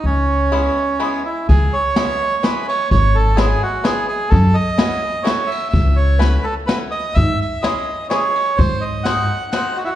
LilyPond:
<<
  \new Staff \with { instrumentName = "Bandoneon" } { \time 3/4 \key cis \minor \tempo 4 = 126 cis'2~ cis'8 e'8 | gis'8 cis''4. b'8 cis''8 | cis''8 a'8 gis'8 fis'8 gis'8 gis'8 | a'8 dis''4. cis''8 e''8 |
e''8 cis''8 b'8 a'8 b'8 dis''8 | e''8 e''8 dis''4 cis''4 | bis'8 dis''8 fis''4 fis''8 fis'32 e'32 fis'16 | }
  \new Staff \with { instrumentName = "Five-string banjo" } { \time 3/4 \key cis \minor r4 <gis b cis' e'>8 r8 <gis b cis' e'>8 r8 | r4 <gis b cis' e'>8 r8 <gis b cis' e'>8 r8 | r4 <gis b cis' e'>8 r8 <gis b cis' e'>8 r8 | r4 <a cis' e' fis'>8 r8 <a cis' e' fis'>8 r8 |
r4 <a cis' e' fis'>8 r8 <a cis' e' fis'>8 r8 | r4 <gis cis' e' gis'>8 r8 <gis cis' e' gis'>8 r8 | r4 <gis bis dis' fis'>8 r8 <gis bis dis' fis'>8 r8 | }
  \new Staff \with { instrumentName = "Upright bass" } { \clef bass \time 3/4 \key cis \minor cis,2 r4 | cis,8 r2 r8 | gis,,2 r4 | fis,8 r2 r8 |
cis,2 r4 | gis,8 r2 r8 | gis,2 r4 | }
  \new DrumStaff \with { instrumentName = "Drums" } \drummode { \time 3/4 r4 r4 r4 | <bd cymr>4 <cymr sn>4 <cymr sn>8 cymr8 | <bd cymr>4 <cymr sn>4 <cymr sn>4 | <bd cymr>4 <cymr sn>4 <cymr sn>8 cymr8 |
<bd cymr>4 <cymr sn>4 <cymr sn>4 | <bd cymr>4 <cymr sn>4 <cymr sn>8 cymr8 | <bd cymr>4 <cymr sn>4 <cymr sn>4 | }
>>